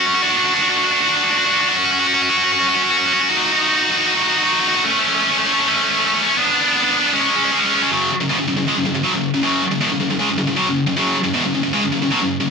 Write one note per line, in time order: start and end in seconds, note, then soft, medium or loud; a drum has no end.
0.06 0.14 C#4 medium
0.06 0.14 F#4 medium
0.15 0.22 C#4 medium
0.15 0.22 F#4 medium
0.22 0.30 D4 loud
0.22 0.31 F#4 loud
0.31 0.36 D4 medium
0.31 0.38 F#4 medium
0.37 0.45 D4 medium
0.37 0.45 F#4 medium
0.45 0.53 D4 medium
0.45 0.53 F#4 medium
0.53 0.61 D4 medium
0.53 0.61 F#4 medium
0.61 0.68 D4 medium
0.61 0.68 F#4 medium
0.68 0.76 D4 medium
0.68 0.76 F#4 medium
0.76 0.84 D4 medium
0.76 0.83 F#4 medium
0.83 0.91 D4 medium
0.83 0.91 F#4 medium
0.91 0.99 D4 medium
0.91 0.99 F#4 medium
1.00 1.07 D4 medium
1.00 1.06 F#4 medium
1.07 1.15 D4 medium
1.07 1.14 F#4 medium
1.15 1.23 D4 medium
1.15 1.23 F#4 medium
1.23 1.30 D4 medium
1.23 1.30 F#4 medium
1.30 1.38 D4 medium
1.30 1.37 F#4 medium
1.37 1.46 D4 medium
1.37 1.45 F#4 medium
1.45 1.53 D4 medium
1.45 1.51 F#4 medium
1.52 1.60 D4 medium
1.52 1.59 F#4 medium
1.60 1.68 D4 medium
1.60 1.68 F#4 medium
1.68 1.76 D4 medium
1.68 1.76 F#4 medium
1.76 1.84 C#4 medium
1.76 1.84 F#4 loud
1.84 1.92 C#4 medium
1.84 1.91 F#4 medium
1.91 1.99 C#4 medium
1.91 1.99 F#4 medium
1.99 2.06 C#4 medium
1.99 2.07 F#4 medium
2.07 2.14 C#4 medium
2.07 2.14 F#4 medium
2.14 2.22 C#4 medium
2.14 2.22 F#4 medium
2.22 2.29 C#4 medium
2.22 2.30 F#4 loud
2.30 2.37 C#4 medium
2.30 2.37 F#4 medium
2.37 2.45 C#4 medium
2.37 2.44 F#4 loud
2.44 2.53 C#4 medium
2.44 2.52 F#4 medium
2.52 2.60 C#4 medium
2.52 2.59 F#4 loud
2.59 2.68 C#4 medium
2.59 2.67 F#4 medium
2.68 2.76 C#4 medium
2.68 2.74 F#4 loud
2.75 2.84 C#4 medium
2.75 2.82 F#4 medium
2.83 2.91 C#4 medium
2.83 2.90 F#4 loud
2.91 2.99 C#4 medium
2.91 2.97 F#4 medium
2.98 3.07 C#4 medium
2.98 3.05 F#4 loud
3.05 3.14 C#4 medium
3.05 3.13 F#4 medium
3.13 3.22 C#4 medium
3.13 3.20 F#4 medium
3.21 3.29 C#4 medium
3.21 3.28 F#4 medium
3.29 3.36 D#4 medium
3.29 3.37 F#4 loud
3.37 3.44 D#4 medium
3.37 3.45 F#4 medium
3.45 3.52 D#4 medium
3.45 3.52 F#4 medium
3.52 3.59 D#4 medium
3.52 3.60 F#4 medium
3.60 3.68 D#4 medium
3.60 3.68 F#4 medium
3.68 3.75 D#4 medium
3.68 3.75 F#4 medium
3.75 3.83 D#4 medium
3.75 3.83 F#4 loud
3.83 3.91 D#4 medium
3.83 3.91 F#4 medium
3.91 3.98 D#4 medium
3.91 3.99 F#4 medium
3.98 4.06 D#4 medium
3.98 4.07 F#4 medium
4.07 4.14 D#4 medium
4.07 4.15 F#4 medium
4.15 4.21 D#4 medium
4.15 4.22 F#4 medium
4.21 4.29 D#4 medium
4.21 4.30 F#4 medium
4.29 4.37 D#4 medium
4.29 4.38 F#4 medium
4.38 4.44 D#4 medium
4.38 4.44 F#4 medium
4.45 4.52 D#4 medium
4.45 4.52 F#4 medium
4.53 4.60 D#4 medium
4.53 4.59 F#4 medium
4.60 4.67 D#4 medium
4.60 4.68 F#4 medium
4.67 4.75 D#4 medium
4.67 4.75 F#4 medium
4.75 4.83 D#4 medium
4.75 4.84 F#4 medium
4.83 4.90 A3 medium
4.83 4.91 C#4 loud
4.91 4.98 A3 medium
4.91 4.99 C#4 medium
4.98 5.06 A3 medium
4.98 5.07 C#4 medium
5.07 5.14 A3 medium
5.07 5.14 C#4 medium
5.14 5.21 A3 medium
5.14 5.21 C#4 medium
5.21 5.28 A3 medium
5.21 5.29 C#4 medium
5.29 5.37 A3 medium
5.29 5.38 C#4 medium
5.38 5.44 A3 medium
5.38 5.45 C#4 medium
5.44 5.52 A3 medium
5.44 5.53 C#4 medium
5.53 5.60 A3 medium
5.53 5.60 C#4 medium
5.60 5.68 A3 medium
5.60 5.68 C#4 medium
5.68 5.76 A3 medium
5.68 5.75 C#4 medium
5.76 5.82 A3 medium
5.76 5.83 C#4 medium
5.82 5.90 A3 medium
5.82 5.90 C#4 medium
5.91 5.98 A3 medium
5.91 5.98 C#4 medium
5.99 6.05 A3 medium
5.99 6.06 C#4 medium
6.06 6.13 A3 medium
6.06 6.14 C#4 medium
6.14 6.21 A3 medium
6.14 6.21 C#4 medium
6.22 6.29 A3 medium
6.22 6.29 C#4 medium
6.30 6.37 A3 medium
6.30 6.38 C#4 medium
6.37 6.45 B3 medium
6.37 6.45 D4 loud
6.45 6.52 B3 medium
6.45 6.52 D4 medium
6.53 6.59 B3 medium
6.53 6.60 D4 medium
6.60 6.67 B3 medium
6.60 6.68 D4 medium
6.67 6.75 B3 medium
6.67 6.76 D4 medium
6.76 6.82 B3 medium
6.76 6.83 D4 medium
6.83 6.89 B3 medium
6.83 6.91 D4 loud
6.90 6.97 B3 medium
6.90 6.98 D4 medium
6.98 7.06 B3 medium
6.98 7.06 D4 medium
7.06 7.13 B3 medium
7.06 7.13 D4 medium
7.13 7.20 G#3 medium
7.13 7.21 C#4 loud
7.21 7.27 G#3 medium
7.21 7.29 C#4 medium
7.27 7.35 G#3 medium
7.27 7.36 C#4 medium
7.36 7.44 G#3 medium
7.36 7.44 C#4 medium
7.45 7.51 G#3 medium
7.45 7.51 C#4 medium
7.51 7.58 G#3 medium
7.51 7.59 C#4 medium
7.59 7.66 G#3 medium
7.59 7.66 C#4 medium
7.66 7.73 G#3 medium
7.66 7.74 C#4 medium
7.74 7.82 G#3 medium
7.74 7.82 C#4 medium
7.82 7.90 G#3 medium
7.82 7.90 C#4 medium
7.90 8.09 F#2 medium
7.90 8.09 C#3 loud
7.90 8.10 F#3 loud
8.11 muted distorted electric guitar stroke medium
8.21 8.29 F#2 medium
8.21 8.30 C#3 medium
8.29 8.38 E2 loud
8.29 8.38 B2 loud
8.39 8.46 F#2 medium
8.39 8.47 C#3 medium
8.48 8.56 F#2 medium
8.48 8.56 C#3 medium
8.57 8.67 F#2 medium
8.57 8.67 C#3 medium
8.68 8.76 C#3 medium
8.68 8.77 G#3 loud
8.77 8.85 F#2 medium
8.77 8.85 C#3 medium
8.86 8.94 F#2 medium
8.86 8.94 C#3 medium
8.95 9.05 F#2 medium
8.95 9.04 C#3 medium
9.04 9.14 B2 loud
9.04 9.14 F#3 loud
9.14 9.30 F#2 medium
9.14 9.30 C#3 medium
9.34 9.42 F#2 medium
9.34 9.43 C#3 medium
9.43 9.62 F#2 loud
9.43 9.62 C#3 loud
9.43 9.63 F#3 loud
9.64 muted distorted electric guitar stroke medium
9.72 9.81 F#2 medium
9.72 9.82 C#3 medium
9.81 9.90 E2 loud
9.81 9.91 B2 loud
9.92 9.99 F#2 medium
9.92 10.00 C#3 medium
10.00 10.09 F#2 medium
10.00 10.10 C#3 medium
10.10 10.20 F#2 medium
10.10 10.18 C#3 medium
10.19 10.28 C#3 loud
10.19 10.29 G#3 loud
10.29 10.37 F#2 medium
10.29 10.37 C#3 medium
10.38 10.46 F#2 medium
10.38 10.46 C#3 medium
10.47 10.57 F#2 medium
10.47 10.56 C#3 medium
10.56 10.66 B2 loud
10.56 10.67 F#3 loud
10.67 10.83 F#2 medium
10.67 10.83 C#3 medium
10.87 10.95 F#2 medium
10.87 10.96 C#3 medium
10.97 11.14 F#2 loud
10.97 11.16 C#3 loud
10.97 11.16 F#3 loud
11.15 muted distorted electric guitar stroke medium
11.25 11.34 F#2 medium
11.25 11.35 C#3 medium
11.35 11.44 E2 loud
11.35 11.44 B2 loud
11.45 11.53 F#2 medium
11.45 11.53 C#3 medium
11.55 11.62 F#2 medium
11.55 11.62 C#3 medium
11.63 11.73 F#2 medium
11.63 11.72 C#3 medium
11.73 11.81 C#3 loud
11.73 11.82 G#3 loud
11.82 11.91 F#2 medium
11.82 11.91 C#3 medium
11.92 12.02 F#2 medium
11.92 12.02 C#3 medium
12.03 12.12 F#2 medium
12.03 12.11 C#3 medium
12.11 12.20 B2 loud
12.11 12.21 F#3 loud
12.22 12.37 F#2 medium
12.22 12.37 C#3 medium
12.40 12.48 F#2 medium
12.40 12.49 C#3 medium